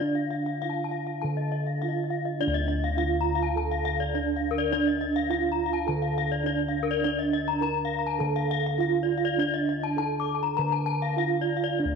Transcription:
0.00 0.59 D3 medium
0.00 0.62 D4 soft
0.00 1.79 D4 medium
0.15 0.24 F5 soft
0.31 0.39 F5 soft
0.46 0.55 F5 soft
0.62 0.71 D#4 soft
0.62 1.24 F4 soft
0.62 0.70 F5 soft
0.70 0.78 A5 soft
0.84 0.93 A5 soft
0.91 1.00 F5 soft
1.07 1.15 F5 soft
1.22 2.96 D3 medium
1.22 1.82 A4 soft
1.22 1.30 A5 soft
1.37 1.45 D#5 soft
1.52 1.60 D#5 soft
1.67 1.75 F5 soft
1.82 1.91 D#4 soft
1.82 2.41 F4 medium
1.82 1.90 F5 soft
1.89 1.97 D#5 soft
2.04 2.12 D#5 soft
2.10 2.19 F5 soft
2.25 2.33 D#5 soft
2.39 2.98 D4 medium
2.39 4.11 D4 medium
2.39 2.48 D5 medium
2.47 5.87 D2 medium
2.54 2.62 D#5 medium
2.68 2.76 D#5 medium
2.84 2.92 F5 medium
2.97 3.07 D#4 soft
2.97 3.56 F4 medium
2.97 3.06 F5 medium
3.21 3.28 A#5 medium
3.35 3.43 F5 medium
3.43 3.50 A5 medium
3.56 4.14 A4 medium
3.56 3.64 A5 medium
3.71 3.79 F5 medium
3.85 3.93 F5 medium
4.00 4.07 D5 soft
4.14 4.70 D4 medium
4.14 4.24 D#4 soft
4.14 4.22 D5 medium
4.36 4.44 F5 soft
4.51 4.58 A#4 medium
4.58 4.65 D5 medium
4.71 5.30 D4 medium
4.71 6.42 D4 medium
4.71 4.80 D5 medium
4.87 4.94 D#5 soft
5.01 5.09 D#5 medium
5.16 5.23 F5 medium
5.29 5.39 D#4 medium
5.29 5.88 F4 medium
5.29 5.38 F5 medium
5.52 5.59 A#5 medium
5.66 5.74 F5 soft
5.73 5.81 A5 medium
5.86 7.58 D3 medium
5.86 6.45 A4 medium
5.86 5.95 A5 medium
6.02 6.10 F5 medium
6.18 6.25 F5 medium
6.32 6.39 D5 medium
6.44 7.00 D4 medium
6.44 6.55 D#4 soft
6.44 6.53 D5 medium
6.68 6.75 F5 soft
6.83 6.90 A#4 medium
6.91 6.97 D5 medium
7.02 7.61 D4 medium
7.02 8.75 D4 medium
7.02 7.11 D5 medium
7.19 7.26 D#5 medium
7.33 7.40 D#5 medium
7.48 7.55 A#5 medium
7.61 8.20 A#4 medium
7.61 7.69 A#5 medium
7.85 7.92 F5 medium
7.99 8.06 A#5 soft
8.07 8.13 A5 medium
8.19 9.94 D3 medium
8.19 8.78 A4 medium
8.19 8.27 A5 medium
8.36 8.43 F5 medium
8.51 8.58 F5 medium
8.66 8.73 F5 medium
8.78 8.88 D#4 soft
8.78 9.38 F4 medium
8.78 8.87 F5 medium
9.03 9.09 D5 soft
9.18 9.24 F5 medium
9.25 9.31 D5 medium
9.37 9.97 D4 medium
9.37 11.14 D4 medium
9.37 9.46 D5 medium
9.54 9.61 D#5 medium
9.69 9.76 D#5 medium
9.84 9.90 A5 medium
9.96 10.06 D#4 soft
9.96 10.57 A4 medium
9.96 10.05 A5 medium
10.20 10.27 D6 medium
10.35 10.42 A5 medium
10.43 10.50 A#5 medium
10.57 11.95 D3 medium
10.57 11.17 A#4 medium
10.57 10.65 A#5 medium
10.72 10.80 A5 medium
10.86 10.94 A5 medium
11.02 11.10 F5 medium
11.17 11.27 D#4 soft
11.17 11.78 F4 medium
11.17 11.25 F5 medium
11.41 11.48 D5 medium
11.57 11.64 F5 soft
11.64 11.71 D5 medium
11.79 11.95 D4 soft
11.79 11.95 D4 medium
11.79 11.86 D5 soft
11.85 11.95 D2 medium

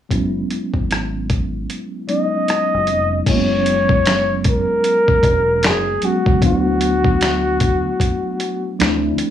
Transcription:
0.09 0.43 F#1 medium
0.09 2.03 F#3 medium
0.09 2.04 G#3 soft
0.09 2.04 B3 medium
0.09 2.05 C#4 soft
0.09 2.05 E4 medium
0.09 kick medium
0.09 closed hi-hat medium
0.51 closed hi-hat medium
0.74 1.65 G#1 medium
0.74 kick medium
0.91 cross-stick medium
0.91 closed hi-hat medium
1.30 kick medium
1.30 closed hi-hat medium
1.70 closed hi-hat medium
2.07 3.25 F#3 soft
2.07 3.26 G#3 soft
2.07 3.26 B3 soft
2.07 3.27 C#4 soft
2.07 3.27 D#4 medium
2.07 3.23 D#5 loud
2.07 closed hi-hat medium
2.48 cross-stick medium
2.48 closed hi-hat medium
2.74 2.90 F#1 medium
2.87 3.20 F1 medium
2.87 closed hi-hat medium
3.26 4.65 F#1 medium
3.26 5.98 F#3 medium
3.26 5.99 G#3 medium
3.26 3.35 A#3 soft
3.26 6.00 C#4 medium
3.26 6.00 E4 medium
3.26 4.42 C#5 loud
3.26 kick medium
3.26 closed hi-hat medium
3.26 crash medium
3.34 6.02 B3 medium
3.66 closed hi-hat medium
3.89 kick loud
4.06 finger snap medium
4.06 snare medium
4.06 closed hi-hat medium
4.44 kick loud
4.44 closed hi-hat medium
4.49 5.68 A#4 medium
4.84 closed hi-hat medium
5.08 kick medium
5.23 5.66 E1 medium
5.23 kick medium
5.23 closed hi-hat medium
5.63 5.96 F#1 medium
5.63 6.07 G#4 medium
5.63 finger snap medium
5.63 snare loud
5.63 closed hi-hat medium
6.02 6.39 F#3 soft
6.02 6.42 G#3 soft
6.02 6.41 B3 soft
6.02 6.43 C#4 soft
6.02 6.43 F#4 medium
6.02 closed hi-hat medium
6.26 6.39 C#2 medium
6.26 kick medium
6.41 7.81 D2 medium
6.41 8.74 F#3 medium
6.41 8.75 A3 medium
6.41 8.75 B3 medium
6.41 8.75 D4 soft
6.41 8.76 E4 medium
6.41 kick medium
6.41 closed hi-hat medium
6.45 8.76 F#4 medium
6.81 closed hi-hat medium
7.05 kick medium
7.21 finger snap medium
7.21 snare medium
7.21 closed hi-hat medium
7.60 kick loud
7.60 closed hi-hat medium
8.00 kick medium
8.00 closed hi-hat medium
8.40 closed hi-hat medium
8.79 9.11 D2 medium
8.79 9.30 F3 medium
8.79 9.30 A3 medium
8.79 9.30 C4 medium
8.79 9.30 D4 medium
8.79 9.30 E4 medium
8.79 finger snap medium
8.79 snare medium
8.79 closed hi-hat medium
9.18 closed hi-hat medium

